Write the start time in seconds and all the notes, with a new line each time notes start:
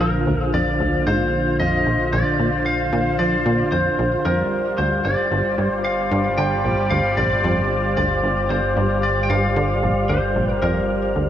Already playing: A#1 D3 F4 F5
0.00 F3 A#4 C5
0.27 D2
0.43 G#4
0.54 F2 D5
0.80 D2
1.07 G#2 C5
1.60 F2 D#5
1.86 A#1
2.13 A#1 D5
2.39 A#2
2.66 F5
2.93 A#2
3.19 F3 D5
3.46 A#2
3.72 F2 C5
3.99 A#1
4.25 G1 F2 G3 G4 A#4 D5
4.78 D2 C5
5.05 G1 D5
5.32 G1
5.58 G2
5.65 C5
5.85 F5
6.11 G2
6.38 D3 G5
6.64 A#1
6.91 D2 F5
7.17 A#1 D5
7.44 F2
7.97 D2 D5
8.24 G1
8.50 G1 C5
8.77 G2
9.03 D5
9.23 G5
9.30 G2 F5
9.56 D3
9.83 A#1
10.09 D2 C5
10.36 A#1
10.62 F2 A#4
11.16 D2